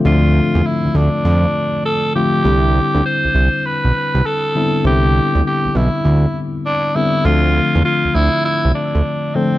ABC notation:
X:1
M:4/4
L:1/16
Q:"Swing 16ths" 1/4=100
K:C
V:1 name="Tenor saxophone"
F4 E2 D6 A2 G2- | G4 c4 B4 A4 | G4 G2 E4 z2 D2 E2 | F4 F2 E2 E2 D4 C2 |]
V:2 name="Tine electric piano"
[D,F,A,CD]8 z6 [D,F,A,CF]2 | [D,G,CDE]8 z6 [D,G,B,CE]2 | [D,G,B,CE]8 z6 [D,G,B,CE]2 | [D,F,A,CF]8 z6 [D,F,A,CD]2 |]
V:3 name="Analog synth bass" clef=bass
D,,3 E,, z D,, D,, z F,,2 z6 | C,,3 D,, z C,, C,, z2 B,,, z C,, z4 | C,,3 D,, z B,,, B,,, z D,,2 z6 | D,,3 E,, z D,, D,, z2 C,, z D,, z4 |]